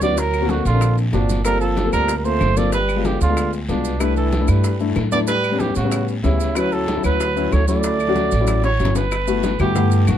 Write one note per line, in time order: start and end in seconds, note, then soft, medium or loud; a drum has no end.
0.00 0.60 D2 medium
0.00 0.19 B3 medium
0.00 0.17 C#4 medium
0.00 0.17 E4 medium
0.00 0.18 F#4 medium
0.00 0.20 D5 loud
0.00 high bongo soft
0.00 high conga medium
0.00 short guiro medium
0.00 maracas medium
0.17 0.51 F#3 medium
0.17 0.51 A#4 loud
0.17 high bongo medium
0.17 high conga soft
0.17 long guiro medium
0.17 maracas medium
0.33 high bongo soft
0.33 high conga soft
0.33 claves medium
0.33 maracas soft
0.41 0.63 A#3 medium
0.41 0.64 C4 medium
0.41 0.64 F#4 medium
0.49 0.65 D3 medium
0.49 0.66 F#4 medium
0.49 high bongo medium
0.49 high conga medium
0.49 short guiro medium
0.49 maracas soft
0.65 1.10 A#1 loud
0.65 0.95 D3 medium
0.65 0.95 F4 loud
0.65 high conga soft
0.65 short guiro medium
0.65 maracas medium
0.73 1.01 A#3 medium
0.73 1.01 C4 medium
0.73 1.01 D4 medium
0.81 high bongo medium
0.81 high conga soft
0.81 long guiro medium
0.81 claves medium
0.81 maracas medium
0.98 high conga soft
0.98 maracas soft
1.12 1.87 G1 medium
1.12 1.43 A#2 medium
1.12 1.35 A#3 medium
1.12 1.35 C4 medium
1.12 1.43 D4 medium
1.12 1.36 F#4 medium
1.12 high bongo soft
1.12 low bongo medium
1.12 short guiro medium
1.12 maracas soft
1.29 high bongo soft
1.29 high conga medium
1.29 short guiro medium
1.29 maracas medium
1.45 1.60 G3 medium
1.45 1.73 A#3 medium
1.45 1.73 C4 medium
1.45 1.73 F4 medium
1.45 1.73 A4 medium
1.45 1.60 A#4 loud
1.45 high bongo medium
1.45 high conga soft
1.45 long guiro medium
1.45 claves medium
1.45 maracas medium
1.60 1.90 F3 medium
1.60 1.91 A4 medium
1.60 high bongo soft
1.60 high conga soft
1.60 maracas soft
1.77 high bongo medium
1.77 high conga loud
1.77 short guiro medium
1.77 maracas soft
1.84 2.12 A#3 medium
1.84 2.13 C4 medium
1.84 2.13 F4 medium
1.84 2.13 A4 medium
1.92 2.38 D2 medium
1.92 2.16 G3 medium
1.92 2.16 A#4 loud
1.92 short guiro medium
1.92 claves medium
1.92 maracas medium
2.08 high bongo medium
2.08 high conga soft
2.08 long guiro medium
2.08 maracas medium
2.17 2.26 G3 medium
2.17 2.26 A#4 medium
2.24 2.59 A3 medium
2.24 2.47 A#3 medium
2.24 2.47 C4 medium
2.24 2.47 F4 medium
2.24 2.47 A#4 medium
2.24 2.59 C5 loud
2.24 high conga soft
2.24 maracas soft
2.40 3.15 G1 medium
2.40 high bongo soft
2.40 low bongo medium
2.40 high conga medium
2.40 short guiro medium
2.40 claves medium
2.40 maracas soft
2.56 2.73 A#3 medium
2.56 2.72 A#3 medium
2.56 2.73 C4 medium
2.56 2.73 F4 medium
2.56 2.73 A4 medium
2.56 2.72 D5 loud
2.56 high bongo soft
2.56 high conga medium
2.56 short guiro medium
2.56 maracas medium
2.72 3.06 G3 medium
2.72 3.07 B4 loud
2.72 high bongo medium
2.72 long guiro medium
2.72 maracas medium
2.89 high bongo soft
2.89 high conga soft
2.89 claves medium
2.89 maracas soft
2.96 3.19 G#3 medium
2.96 3.19 B3 medium
2.96 3.19 F4 medium
3.05 3.20 D3 medium
3.05 3.21 G4 medium
3.05 high bongo medium
3.05 high conga medium
3.05 short guiro medium
3.05 maracas soft
3.21 3.65 D2 loud
3.21 3.51 D3 medium
3.21 3.51 F4 medium
3.21 high conga soft
3.21 short guiro medium
3.21 maracas medium
3.29 3.57 G#3 medium
3.29 3.57 B3 medium
3.29 3.57 F4 medium
3.37 high bongo medium
3.37 high conga soft
3.37 long guiro medium
3.37 claves medium
3.37 maracas medium
3.53 high conga soft
3.53 maracas soft
3.68 4.43 C2 medium
3.68 4.02 B2 medium
3.68 3.91 G#3 medium
3.68 3.91 B3 medium
3.68 4.02 D4 medium
3.68 3.91 F4 medium
3.68 high bongo soft
3.68 low bongo medium
3.68 short guiro medium
3.68 maracas soft
3.85 high bongo soft
3.85 short guiro medium
3.85 maracas medium
4.00 4.16 G3 medium
4.00 4.28 A3 medium
4.00 4.28 D4 medium
4.00 4.29 E4 medium
4.00 4.17 B4 loud
4.00 high bongo medium
4.00 high conga soft
4.00 long guiro medium
4.00 claves medium
4.00 maracas medium
4.16 4.50 E3 medium
4.16 4.50 A4 medium
4.16 high bongo soft
4.16 high conga soft
4.16 maracas soft
4.32 high bongo medium
4.32 high conga medium
4.32 short guiro medium
4.32 maracas soft
4.40 4.68 A3 medium
4.40 4.68 D4 medium
4.40 4.69 E4 medium
4.48 4.93 G2 loud
4.48 4.80 G3 medium
4.48 4.81 B4 medium
4.48 short guiro medium
4.48 claves medium
4.48 maracas medium
4.64 high bongo medium
4.64 high conga soft
4.64 long guiro medium
4.64 maracas medium
4.80 5.02 A3 medium
4.80 5.03 D4 medium
4.80 5.03 E4 medium
4.80 high conga soft
4.80 maracas soft
4.95 5.71 A2 medium
4.95 high bongo soft
4.95 low bongo medium
4.95 high conga medium
4.95 short guiro medium
4.95 claves medium
4.95 maracas soft
5.11 5.28 A3 medium
5.11 5.20 B3 medium
5.11 5.28 D4 medium
5.11 5.28 E4 medium
5.11 5.19 D5 loud
5.11 high bongo soft
5.11 high conga medium
5.11 short guiro medium
5.11 maracas medium
5.27 5.62 G3 medium
5.27 5.61 B4 loud
5.27 high bongo medium
5.27 high conga soft
5.27 long guiro medium
5.27 maracas medium
5.44 high bongo soft
5.44 high conga soft
5.44 claves medium
5.44 maracas soft
5.51 5.74 G3 medium
5.51 5.75 B3 medium
5.51 5.75 C#4 medium
5.60 5.75 E3 medium
5.60 5.75 G4 loud
5.60 high bongo medium
5.60 high conga medium
5.60 short guiro medium
5.60 maracas soft
5.75 6.21 A2 medium
5.75 6.06 C#3 medium
5.75 6.06 F#4 medium
5.75 high conga soft
5.75 short guiro medium
5.75 maracas medium
5.83 6.12 G3 medium
5.83 6.12 B3 medium
5.83 6.12 C#4 medium
5.91 high bongo medium
5.91 high conga soft
5.91 long guiro medium
5.91 claves medium
5.91 maracas medium
6.08 high conga soft
6.08 maracas soft
6.24 6.98 D2 medium
6.24 6.58 C#3 medium
6.24 6.46 G3 medium
6.24 6.46 B3 medium
6.24 6.47 C#4 medium
6.24 6.58 E4 medium
6.24 high bongo soft
6.24 low bongo medium
6.24 short guiro medium
6.24 maracas soft
6.40 high bongo soft
6.40 short guiro medium
6.40 maracas medium
6.55 6.84 F#3 medium
6.55 6.72 F#3 medium
6.55 6.84 C#4 medium
6.55 6.84 E4 medium
6.55 6.74 B4 loud
6.55 high bongo medium
6.55 high conga soft
6.55 long guiro medium
6.55 claves medium
6.55 maracas medium
6.72 7.03 F#3 medium
6.72 7.04 A4 medium
6.72 high bongo soft
6.72 high conga soft
6.72 maracas soft
6.88 high bongo medium
6.88 high conga medium
6.88 short guiro medium
6.88 maracas soft
6.95 7.24 F#3 medium
6.95 7.24 C#4 medium
6.95 7.24 E4 medium
7.04 7.49 D2 loud
7.04 7.54 F#3 medium
7.04 7.54 B4 loud
7.04 short guiro medium
7.04 claves medium
7.04 maracas medium
7.20 high bongo medium
7.20 high conga soft
7.20 long guiro medium
7.20 maracas medium
7.36 7.58 F#3 medium
7.36 7.59 C#4 medium
7.36 7.59 E4 medium
7.36 high conga soft
7.36 maracas soft
7.52 8.27 D2 medium
7.52 7.67 A3 medium
7.52 7.68 C#5 medium
7.52 high bongo soft
7.52 low bongo medium
7.52 high conga medium
7.52 short guiro medium
7.52 claves medium
7.52 maracas soft
7.67 7.96 F#3 medium
7.67 8.75 A3 medium
7.67 7.96 C#4 medium
7.67 7.96 E4 medium
7.67 8.60 D5 medium
7.67 high bongo soft
7.67 high conga medium
7.67 short guiro medium
7.67 maracas medium
7.83 high bongo medium
7.83 high conga soft
7.83 long guiro medium
7.83 maracas medium
7.99 high bongo soft
7.99 high conga soft
7.99 claves medium
7.99 maracas soft
8.08 8.30 F#3 medium
8.08 8.30 C#4 medium
8.08 8.31 F#4 loud
8.16 high bongo medium
8.16 high conga medium
8.16 short guiro medium
8.16 maracas soft
8.31 8.77 A1 loud
8.31 high conga soft
8.31 short guiro medium
8.31 maracas medium
8.40 8.68 F#3 medium
8.40 8.68 C#4 medium
8.40 8.68 E4 medium
8.47 high bongo medium
8.47 high conga soft
8.47 long guiro medium
8.47 claves medium
8.47 maracas medium
8.63 8.94 C#5 loud
8.63 high bongo loud
8.63 high conga soft
8.63 maracas soft
8.79 9.54 G1 medium
8.79 9.02 F#3 medium
8.79 9.02 C#4 medium
8.79 9.02 E4 medium
8.79 high conga soft
8.79 short guiro medium
8.79 maracas soft
8.85 low bongo medium
8.95 9.56 B4 loud
8.95 low bongo loud
8.95 short guiro medium
8.95 maracas medium
9.12 high bongo medium
9.12 high conga soft
9.12 long guiro medium
9.12 claves medium
9.12 maracas medium
9.27 9.50 A3 medium
9.27 9.50 B3 medium
9.27 9.50 E4 medium
9.27 9.50 F#4 medium
9.27 high bongo soft
9.27 high conga soft
9.27 maracas medium
9.43 high bongo medium
9.43 high conga medium
9.43 short guiro medium
9.43 maracas medium
9.59 10.04 G2 loud
9.59 9.71 A3 medium
9.59 9.71 B3 medium
9.59 9.71 E4 medium
9.59 9.71 F#4 medium
9.59 10.09 G4 loud
9.59 high conga soft
9.59 low conga medium
9.59 short guiro medium
9.59 claves medium
9.59 maracas soft
9.75 10.15 A3 medium
9.75 10.15 B3 medium
9.75 10.15 E4 medium
9.75 10.15 F#5 medium
9.75 high bongo medium
9.75 high conga soft
9.75 low conga medium
9.75 long guiro medium
9.75 maracas medium
9.91 high bongo soft
9.91 high conga soft
9.91 maracas medium
10.07 10.18 B1 medium
10.07 10.18 F#4 medium
10.07 high bongo soft
10.07 low bongo medium
10.07 high conga medium
10.07 short guiro medium
10.07 claves medium
10.07 maracas medium